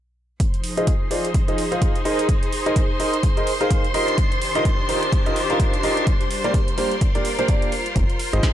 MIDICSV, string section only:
0, 0, Header, 1, 2, 480
1, 0, Start_track
1, 0, Tempo, 472441
1, 406, Time_signature, 4, 2, 24, 8
1, 8666, End_track
2, 0, Start_track
2, 0, Title_t, "String section"
2, 0, Program_c, 0, 48
2, 408, Note_on_c, 0, 53, 61
2, 632, Note_on_c, 0, 63, 77
2, 690, Note_on_c, 0, 68, 82
2, 1165, Note_on_c, 0, 72, 69
2, 2087, Note_off_c, 0, 53, 0
2, 4006, Note_off_c, 0, 68, 0
2, 4007, Note_off_c, 0, 63, 0
2, 4008, Note_on_c, 0, 51, 82
2, 4102, Note_on_c, 0, 62, 86
2, 4457, Note_on_c, 0, 67, 84
2, 6166, Note_on_c, 0, 55, 71
2, 6167, Note_off_c, 0, 51, 0
2, 6390, Note_on_c, 0, 65, 67
2, 6537, Note_on_c, 0, 70, 72
2, 6941, Note_off_c, 0, 72, 0
2, 6943, Note_off_c, 0, 67, 0
2, 6944, Note_off_c, 0, 62, 0
2, 7045, Note_on_c, 0, 74, 68
2, 8085, Note_off_c, 0, 74, 0
2, 8086, Note_off_c, 0, 55, 0
2, 8666, Note_off_c, 0, 65, 0
2, 8666, Note_off_c, 0, 70, 0
2, 8666, End_track
0, 0, End_of_file